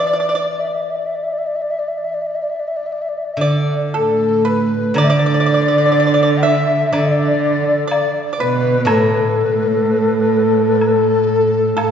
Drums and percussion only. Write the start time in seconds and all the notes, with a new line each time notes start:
4.96 high woodblock
6.93 high woodblock
7.91 high woodblock, low woodblock
8.87 high woodblock
10.81 high woodblock
11.78 high woodblock, low woodblock